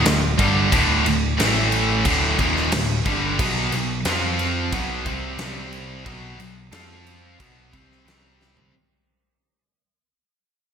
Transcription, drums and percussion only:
0.05 snare loud
0.05 crash medium
0.39 kick loud
0.39 crash medium
0.72 kick loud
0.72 crash medium
1.06 crash medium
1.40 snare loud
1.40 crash medium
1.72 crash medium
2.05 kick loud
2.05 crash medium
2.39 kick loud
2.39 crash medium
2.56 snare soft
2.72 snare loud
2.72 crash loud
3.06 kick loud
3.06 crash medium
3.39 kick loud
3.39 crash medium
3.72 crash medium
4.05 snare loud
4.05 crash medium
4.39 crash medium
4.73 kick loud
4.73 crash medium
5.06 kick loud
5.06 crash medium
5.38 snare loud
5.38 crash medium
5.72 crash medium
6.06 kick loud
6.06 crash medium
6.40 crash medium
6.72 snare loud
6.72 crash medium
7.07 crash medium
7.40 kick loud
7.40 crash medium
7.73 kick loud
7.73 crash medium
7.92 snare soft
8.08 snare loud
8.08 crash medium
8.41 snare medium
8.57 floor tom medium

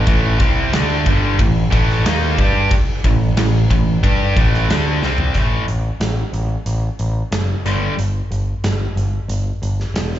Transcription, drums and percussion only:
0.07 kick loud
0.07 ride medium
0.40 kick loud
0.40 ride medium
0.73 snare loud
0.73 ride loud
1.06 kick loud
1.06 ride medium
1.39 kick medium
1.39 ride loud
1.72 kick loud
1.72 ride medium
1.90 snare soft
2.06 snare loud
2.06 ride loud
2.38 kick loud
2.38 ride medium
2.71 kick loud
2.71 ride loud
3.04 kick medium
3.04 ride medium
3.37 snare loud
3.37 ride loud
3.71 kick medium
3.71 ride medium
4.04 kick loud
4.04 ride loud
4.37 kick loud
4.37 ride medium
4.54 snare soft
4.70 snare loud
4.70 ride medium
5.03 snare medium
5.18 floor tom medium
5.34 kick medium
5.34 closed hi-hat medium
5.68 closed hi-hat medium
6.01 snare loud
6.01 closed hi-hat medium
6.34 closed hi-hat medium
6.66 closed hi-hat medium
6.99 closed hi-hat medium
7.32 snare loud
7.32 closed hi-hat medium
7.66 closed hi-hat medium
7.99 closed hi-hat medium
8.32 closed hi-hat medium
8.64 snare loud
8.64 closed hi-hat medium
8.97 closed hi-hat medium
9.29 closed hi-hat medium
9.63 closed hi-hat medium
9.80 snare soft
9.96 snare loud
9.96 closed hi-hat medium
10.14 snare soft

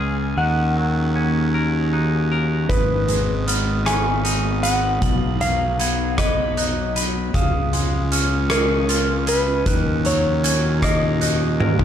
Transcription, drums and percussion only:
2.70 kick medium
2.70 closed hi-hat medium
3.08 closed hi-hat soft
3.48 closed hi-hat soft
3.86 cross-stick medium
3.86 closed hi-hat medium
4.25 closed hi-hat soft
4.63 closed hi-hat soft
5.02 kick medium
5.02 closed hi-hat medium
5.41 closed hi-hat soft
5.79 closed hi-hat soft
6.18 kick medium
6.18 cross-stick medium
6.18 closed hi-hat medium
6.57 closed hi-hat soft
6.96 closed hi-hat soft
7.34 kick medium
7.34 closed hi-hat medium
7.73 closed hi-hat soft
8.12 closed hi-hat soft
8.50 cross-stick medium
8.50 closed hi-hat medium
8.89 closed hi-hat soft
9.27 closed hi-hat medium
9.66 kick medium
9.66 closed hi-hat medium
10.05 closed hi-hat soft
10.44 closed hi-hat medium
10.82 kick medium
10.82 cross-stick medium
10.82 closed hi-hat medium
11.21 closed hi-hat soft
11.60 high tom soft
11.79 floor tom medium

